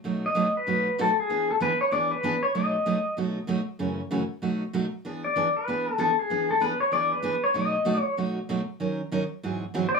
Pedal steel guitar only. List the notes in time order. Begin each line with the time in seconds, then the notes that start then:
0.26 D#5
0.57 B4
1.01 A4
1.20 G#4
1.51 A4
1.62 B4
1.81 C#5
1.92 D5
2.11 B4
2.43 C#5
2.55 D#5
5.24 D5
5.57 B4
6.00 A4
6.19 G#4
6.51 A4
6.62 B4
6.80 C#5
6.93 D5
7.12 B4
7.44 C#5
7.56 D#5
8.00 C#5
9.89 C5
9.95 D5